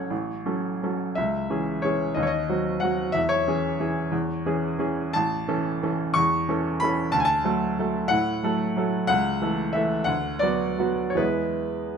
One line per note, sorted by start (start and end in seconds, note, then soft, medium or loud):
0.00 0.10 A1 soft
0.00 0.13 F#3 soft
0.00 0.14 C#4 soft
0.00 0.13 A4 soft
0.00 1.15 C#5 medium
0.10 0.45 A1 soft
0.46 0.79 F#3 soft
0.46 0.79 C#4 soft
0.46 0.79 A4 soft
0.83 1.14 F#3 soft
0.83 1.14 C#4 soft
0.83 1.14 A4 soft
1.15 1.49 C#2 soft
1.15 1.84 E5 medium
1.50 1.81 E3 soft
1.50 1.81 C#4 soft
1.50 1.82 G#4 soft
1.82 2.14 E3 soft
1.82 2.14 C#4 soft
1.82 2.14 G#4 soft
1.82 2.16 C#5 medium
2.14 2.49 D#2 soft
2.14 2.22 D#5 medium
2.23 2.30 C#5 medium
2.27 2.80 D#5 medium
2.49 2.79 F#3 soft
2.49 2.79 C4 soft
2.49 2.79 F#4 soft
2.80 3.11 F#3 soft
2.80 3.11 C4 soft
2.80 3.12 F#4 soft
2.80 3.13 F#5 medium
3.12 3.46 E2 soft
3.12 3.29 E5 medium
3.29 5.13 C#5 medium
3.47 3.77 E3 soft
3.47 3.77 C#4 soft
3.47 3.77 G#4 soft
3.80 4.09 E3 soft
3.80 4.09 C#4 soft
3.80 4.09 G#4 soft
4.12 4.43 E2 medium
4.46 4.75 E3 soft
4.46 4.76 C#4 soft
4.46 4.76 G#4 soft
4.79 5.11 E3 soft
4.79 5.11 C#4 soft
4.79 5.11 G#4 soft
5.13 5.47 A1 medium
5.13 6.14 A5 medium
5.48 5.78 E3 soft
5.48 5.78 C#4 soft
5.48 5.78 A4 soft
5.83 6.12 E3 soft
5.83 6.12 C#4 soft
5.83 6.12 A4 soft
6.14 6.47 E2 medium
6.14 6.80 C#6 medium
6.49 6.78 E3 soft
6.49 6.78 C#4 soft
6.49 6.78 A4 soft
6.80 7.11 E3 soft
6.80 7.12 C#4 soft
6.80 7.12 A4 soft
6.80 7.13 B5 medium
7.12 7.44 D2 medium
7.12 7.19 A5 medium
7.20 7.26 G#5 medium
7.25 8.10 A5 medium
7.44 7.74 F#3 soft
7.44 7.75 A3 soft
7.44 7.75 A4 soft
7.79 8.08 F#3 soft
7.79 8.08 A3 soft
7.79 8.08 A4 soft
8.08 8.42 A2 medium
8.08 9.06 F#5 medium
8.43 8.74 F#3 soft
8.43 8.74 A3 soft
8.43 8.74 A4 medium
8.76 9.05 F#3 soft
8.76 9.06 A3 soft
8.76 9.06 A4 soft
9.07 9.40 C#2 medium
9.07 9.74 F#5 medium
9.42 9.72 E3 soft
9.42 9.72 A3 soft
9.42 9.72 A4 soft
9.73 10.05 E3 soft
9.73 10.05 A3 soft
9.73 10.06 A4 soft
9.73 10.07 E5 medium
10.04 10.40 D2 medium
10.04 10.40 F#5 medium
10.39 10.75 F#3 soft
10.39 10.75 B3 soft
10.39 10.75 F#4 soft
10.39 11.09 D5 medium
10.78 11.14 F#3 soft
10.78 11.15 B3 soft
10.78 11.15 F#4 soft
11.10 11.18 C#5 medium
11.15 11.97 E2 soft
11.15 11.97 G#3 soft
11.15 11.97 B3 soft
11.15 11.97 E4 soft
11.15 11.97 B4 medium